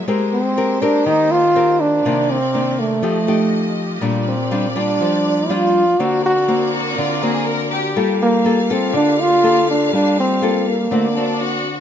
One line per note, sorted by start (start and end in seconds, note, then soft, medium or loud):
0.00 2.00 G#3 medium
0.08 1.03 G#3 medium
0.08 2.03 A#3 medium
0.08 0.39 C4 medium
0.08 2.03 G4 medium
0.08 0.39 G4 medium
0.08 0.39 A#4 medium
0.08 2.03 C5 medium
0.33 0.83 C4 medium
0.57 0.77 C4 medium
0.57 0.78 G4 medium
0.57 0.78 A#4 medium
0.82 1.51 C4 medium
0.82 1.08 D4 loud
0.82 1.51 G4 medium
0.82 1.52 A#4 medium
1.06 2.02 D#3 medium
1.06 1.33 D#4 loud
1.31 1.82 F4 loud
1.55 2.03 C4 medium
1.55 2.03 G4 medium
1.55 2.03 A#4 medium
1.80 2.32 D4 medium
2.05 3.01 C3 medium
2.05 2.37 D#3 medium
2.05 2.37 A#3 medium
2.05 3.02 C4 medium
2.05 2.37 D4 medium
2.05 3.03 A#4 medium
2.05 3.03 D5 medium
2.31 2.81 C4 medium
2.54 3.01 D#3 medium
2.54 3.01 A#3 medium
2.54 3.01 D4 medium
2.79 3.77 A3 medium
3.02 3.99 F3 medium
3.02 3.17 A3 medium
3.02 4.01 A3 medium
3.02 3.17 D#4 medium
3.02 5.96 F4 medium
3.02 3.18 G4 medium
3.02 5.96 G4 medium
3.02 4.01 D#5 medium
3.28 3.98 A3 medium
3.28 3.98 D#4 medium
3.28 3.98 G4 medium
4.01 4.97 A#2 medium
4.01 4.33 G3 medium
4.01 5.98 A#3 medium
4.01 4.33 D4 medium
4.01 4.34 F4 medium
4.01 5.97 D5 medium
4.28 4.78 C4 medium
4.51 4.66 G3 medium
4.51 4.66 D4 medium
4.51 4.66 F4 medium
4.76 5.46 G3 medium
4.76 5.46 D4 medium
4.76 5.52 D4 medium
4.76 5.46 F4 medium
5.01 5.97 F3 medium
5.49 5.83 G3 medium
5.49 5.83 D4 medium
5.49 5.83 F4 medium
5.49 6.02 F4 loud
5.98 6.95 D3 medium
5.98 6.31 A#3 medium
5.98 7.94 C4 medium
5.98 6.31 C4 medium
5.98 7.93 F#4 medium
5.98 6.31 F#4 medium
5.98 6.24 F#4 loud
5.98 7.93 A#4 medium
5.98 7.94 D5 medium
6.26 6.70 F#4 loud
6.48 7.18 A#3 medium
6.48 7.18 C4 medium
6.48 7.18 F#4 medium
6.72 6.95 F#4 medium
6.97 7.94 D3 medium
6.97 7.22 F4 medium
7.21 7.92 A#3 medium
7.21 7.92 C4 medium
7.21 7.92 F#4 medium
7.21 7.46 G#4 medium
7.45 7.71 A#4 medium
7.71 8.06 G4 medium
7.95 8.92 G3 medium
7.95 10.88 A#3 medium
7.95 8.41 A#3 medium
7.95 8.41 F4 medium
7.95 10.88 G4 medium
7.95 11.80 A4 medium
7.95 8.42 A4 medium
7.95 10.88 F5 medium
8.22 8.73 A#3 loud
8.45 8.59 A#3 medium
8.45 8.60 F4 medium
8.45 8.60 A4 medium
8.70 9.40 A#3 medium
8.70 8.95 C4 medium
8.70 9.40 F4 medium
8.70 9.40 A4 medium
8.93 9.90 D3 medium
8.93 9.23 D4 loud
9.21 9.69 F4 loud
9.43 10.38 A#3 medium
9.43 10.38 F4 medium
9.43 10.38 A4 medium
9.70 9.92 D4 medium
9.93 10.89 G3 medium
9.93 10.17 D4 loud
10.20 10.71 C4 medium
10.42 10.75 A#3 soft
10.42 10.75 F4 medium
10.42 10.76 A4 medium
10.70 11.66 A#3 medium
10.91 11.80 D3 medium
10.91 11.06 A3 medium
10.91 11.80 C4 medium
10.91 11.06 C4 medium
10.91 11.80 F#4 medium
10.91 11.06 F#4 medium
10.91 11.80 D5 medium
11.15 11.80 C4 medium
11.15 11.38 D4 medium
11.15 11.80 F#4 medium
11.40 11.80 F#4 medium